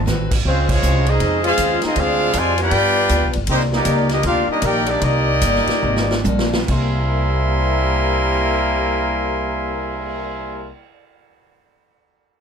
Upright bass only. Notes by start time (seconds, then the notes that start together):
0.07 A1
0.45 C#2
0.83 C2
1.20 F2
1.58 D#2
1.83 muted upright bass stroke
1.96 D2
2.34 F2
2.71 G2
3.10 D2
3.23 B1
3.36 G1
3.47 C2
3.85 C#2
4.24 D2
4.48 muted upright bass stroke
4.62 A#1
5.02 C2
5.42 G1
5.67 muted upright bass stroke
5.83 G#1
6.24 A#1
6.69 C2